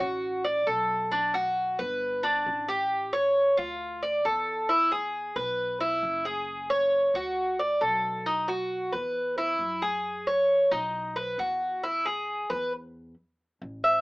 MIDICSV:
0, 0, Header, 1, 3, 480
1, 0, Start_track
1, 0, Tempo, 446429
1, 1203, Time_signature, 4, 2, 24, 8
1, 15064, End_track
2, 0, Start_track
2, 0, Title_t, "Cuban tres"
2, 0, Program_c, 0, 25
2, 0, Note_on_c, 0, 66, 63
2, 464, Note_off_c, 0, 66, 0
2, 479, Note_on_c, 0, 74, 65
2, 714, Note_off_c, 0, 74, 0
2, 717, Note_on_c, 0, 69, 58
2, 1186, Note_off_c, 0, 69, 0
2, 1200, Note_on_c, 0, 62, 68
2, 1435, Note_off_c, 0, 62, 0
2, 1441, Note_on_c, 0, 66, 66
2, 1909, Note_off_c, 0, 66, 0
2, 1923, Note_on_c, 0, 71, 63
2, 2390, Note_off_c, 0, 71, 0
2, 2400, Note_on_c, 0, 62, 76
2, 2869, Note_off_c, 0, 62, 0
2, 2886, Note_on_c, 0, 67, 65
2, 3352, Note_off_c, 0, 67, 0
2, 3364, Note_on_c, 0, 73, 69
2, 3831, Note_off_c, 0, 73, 0
2, 3843, Note_on_c, 0, 65, 62
2, 4311, Note_off_c, 0, 65, 0
2, 4329, Note_on_c, 0, 74, 68
2, 4562, Note_off_c, 0, 74, 0
2, 4570, Note_on_c, 0, 69, 60
2, 5035, Note_off_c, 0, 69, 0
2, 5042, Note_on_c, 0, 64, 67
2, 5278, Note_off_c, 0, 64, 0
2, 5286, Note_on_c, 0, 68, 66
2, 5753, Note_off_c, 0, 68, 0
2, 5762, Note_on_c, 0, 71, 62
2, 6231, Note_off_c, 0, 71, 0
2, 6242, Note_on_c, 0, 64, 73
2, 6711, Note_off_c, 0, 64, 0
2, 6721, Note_on_c, 0, 68, 63
2, 7191, Note_off_c, 0, 68, 0
2, 7204, Note_on_c, 0, 73, 67
2, 7672, Note_off_c, 0, 73, 0
2, 7689, Note_on_c, 0, 66, 64
2, 8155, Note_off_c, 0, 66, 0
2, 8165, Note_on_c, 0, 74, 63
2, 8398, Note_on_c, 0, 69, 58
2, 8400, Note_off_c, 0, 74, 0
2, 8869, Note_off_c, 0, 69, 0
2, 8883, Note_on_c, 0, 63, 66
2, 9118, Note_on_c, 0, 66, 63
2, 9119, Note_off_c, 0, 63, 0
2, 9589, Note_off_c, 0, 66, 0
2, 9596, Note_on_c, 0, 71, 60
2, 10068, Note_off_c, 0, 71, 0
2, 10083, Note_on_c, 0, 64, 76
2, 10552, Note_off_c, 0, 64, 0
2, 10559, Note_on_c, 0, 68, 70
2, 11030, Note_off_c, 0, 68, 0
2, 11043, Note_on_c, 0, 73, 65
2, 11511, Note_off_c, 0, 73, 0
2, 11520, Note_on_c, 0, 63, 64
2, 11990, Note_off_c, 0, 63, 0
2, 11998, Note_on_c, 0, 71, 67
2, 12236, Note_off_c, 0, 71, 0
2, 12246, Note_on_c, 0, 66, 57
2, 12713, Note_off_c, 0, 66, 0
2, 12725, Note_on_c, 0, 64, 69
2, 12960, Note_off_c, 0, 64, 0
2, 12962, Note_on_c, 0, 68, 66
2, 13431, Note_off_c, 0, 68, 0
2, 13439, Note_on_c, 0, 71, 62
2, 13676, Note_off_c, 0, 71, 0
2, 14880, Note_on_c, 0, 76, 69
2, 15064, Note_off_c, 0, 76, 0
2, 15064, End_track
3, 0, Start_track
3, 0, Title_t, "Upright bass"
3, 0, Program_c, 1, 32
3, 4, Note_on_c, 1, 33, 80
3, 681, Note_off_c, 1, 33, 0
3, 721, Note_on_c, 1, 35, 76
3, 1857, Note_off_c, 1, 35, 0
3, 1927, Note_on_c, 1, 31, 84
3, 2604, Note_off_c, 1, 31, 0
3, 2648, Note_on_c, 1, 33, 83
3, 3782, Note_off_c, 1, 33, 0
3, 3845, Note_on_c, 1, 38, 82
3, 4524, Note_off_c, 1, 38, 0
3, 4568, Note_on_c, 1, 40, 80
3, 5702, Note_off_c, 1, 40, 0
3, 5761, Note_on_c, 1, 35, 83
3, 6442, Note_off_c, 1, 35, 0
3, 6481, Note_on_c, 1, 30, 81
3, 7619, Note_off_c, 1, 30, 0
3, 7676, Note_on_c, 1, 38, 80
3, 8360, Note_off_c, 1, 38, 0
3, 8401, Note_on_c, 1, 35, 79
3, 9538, Note_off_c, 1, 35, 0
3, 9603, Note_on_c, 1, 40, 83
3, 10283, Note_off_c, 1, 40, 0
3, 10312, Note_on_c, 1, 42, 76
3, 11453, Note_off_c, 1, 42, 0
3, 11519, Note_on_c, 1, 35, 84
3, 12201, Note_off_c, 1, 35, 0
3, 12235, Note_on_c, 1, 40, 83
3, 13375, Note_off_c, 1, 40, 0
3, 13443, Note_on_c, 1, 40, 84
3, 14122, Note_off_c, 1, 40, 0
3, 14639, Note_on_c, 1, 33, 85
3, 15064, Note_off_c, 1, 33, 0
3, 15064, End_track
0, 0, End_of_file